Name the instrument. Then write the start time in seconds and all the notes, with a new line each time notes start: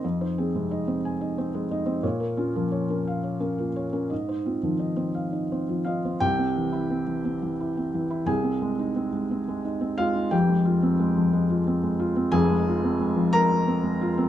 felt piano
0.04 F2 D#5
0.21 D#4 C5
0.38 C4 G#4
0.55 C3 G#3
0.71 D#4 D#5
0.87 C4 C5
1.05 G#5
1.21 D#4 D#5
1.38 C4 C5
1.54 G#3 G#4
1.71 D#4 D#5
1.86 C4 C5
2.03 A#2 C#5
2.20 A#4
2.37 C#4 F4
2.56 F3 A#3
2.72 C#5
2.90 C#4 A#4
3.07 F5
3.23 C#5
3.40 C#4 A#4
3.58 A#3 F4
3.76 C#5
3.93 C#4 A#4
4.10 G#2 D#5
4.29 D#4 C5
4.45 C4 F4
4.63 D#3 F3
4.79 D#4 D#5
4.96 C4 C5
5.15 F5
5.33 D#4 D#5
5.52 C4 C5
5.69 F3 F4
5.85 D#4 F4 D#5 F5
6.05 C4 C5
6.20 C2 C3 G4 G5
6.38 C4
6.57 E3
6.73 E4
6.90 C4
7.07 E3
7.25 C4
7.42 E3
7.60 E4
7.77 C4
7.94 E3
8.11 E4
8.26 C2 C3 G#4 G#5
8.44 C4
8.62 G#3
8.79 D#4
8.96 C4
9.12 G#3
9.31 C4
9.49 G#3
9.65 D#4
9.81 C4
9.98 G#3 F4 F5
10.16 D#4
10.31 F1 F2 G4 G5
10.49 G#3
10.65 F4
10.83 C4
11.00 G#3
11.17 F3
11.33 G#3
11.50 F4
11.67 C4
11.83 G#3
11.99 F4
12.16 C4
12.32 F1 F2 G#4 G#5
12.50 G#3
12.68 F4
12.84 C4
13.01 G#3
13.17 F3
13.33 G#3 A#4 A#5
13.50 F4
13.68 C4
13.83 G#3
14.01 F4
14.18 C4